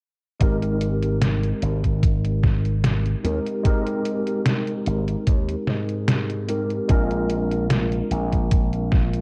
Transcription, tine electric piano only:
0.39 3.19 G#3 medium
0.39 3.20 C4 medium
0.39 3.20 D#4 medium
0.39 3.20 G4 medium
0.39 3.21 A#4 loud
3.24 3.60 G#3 medium
3.24 3.60 C4 medium
3.24 3.60 D#4 medium
3.24 3.61 G4 medium
3.24 3.61 A#4 medium
3.63 6.43 G#3 medium
3.63 6.44 C4 medium
3.63 6.44 D#4 medium
3.63 6.45 G4 medium
3.63 6.45 A#4 loud
6.48 6.84 G#3 medium
6.48 6.85 C4 medium
6.48 6.85 D#4 medium
6.48 6.85 G4 medium
6.48 6.85 A#4 medium
6.88 9.21 G#3 medium
6.88 9.21 C4 medium
6.88 9.21 D4 medium
6.88 9.21 F4 medium
6.88 9.21 A#4 loud

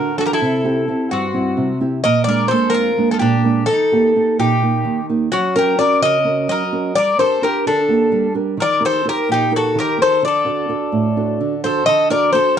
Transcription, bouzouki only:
0.00 0.16 A#4 medium
0.18 0.25 A4 medium
0.26 0.33 A#4 medium
0.33 1.08 A4 medium
1.11 1.77 F#4 medium
2.04 2.24 D#5 loud
2.24 2.48 D5 medium
2.48 2.71 C5 medium
2.70 3.11 A#4 medium
3.11 3.19 A4 medium
3.19 3.64 G4 medium
3.66 4.39 A4 loud
4.40 5.05 G4 medium
5.32 5.53 F#4 medium
5.56 5.77 A#4 medium
5.79 6.02 D5 medium
6.02 6.48 D#5 loud
6.49 6.95 D#5 medium
6.95 7.17 D5 loud
7.19 7.43 C5 medium
7.43 7.64 A#4 medium
7.67 8.32 A4 medium
8.62 8.82 D5 loud
8.86 9.06 C5 medium
9.09 9.29 A#4 medium
9.32 9.52 G4 medium
9.57 9.78 A4 medium
9.80 10.00 A#4 medium
10.02 10.22 C5 medium
10.25 11.60 D5 medium
11.64 11.85 C5 medium
11.86 12.08 D#5 loud
12.11 12.32 D5 medium
12.33 12.57 C5 medium

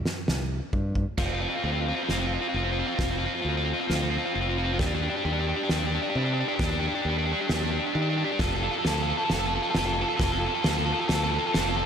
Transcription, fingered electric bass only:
0.28 0.60 C2 medium
0.73 1.05 G2 medium
1.18 1.45 F1 medium
1.64 1.91 D2 medium
2.09 2.36 F1 medium
2.54 2.81 F1 medium
2.99 3.26 F1 medium
3.45 3.72 D2 medium
3.90 4.17 D2 medium
4.35 4.81 F1 medium
4.79 5.07 D#2 medium
5.25 5.52 D#2 medium
5.70 5.97 D#2 medium
6.15 6.43 C3 medium
6.60 6.87 D#2 medium
7.05 7.32 D#2 medium
7.50 7.77 D#2 medium
7.95 8.22 D#3 medium
8.40 8.67 F1 medium
8.85 9.12 D2 medium
9.30 9.57 F1 medium
9.75 10.02 F1 medium
10.20 10.47 F1 medium
10.65 10.92 D2 medium
11.10 11.37 D2 medium
11.54 11.82 F1 medium

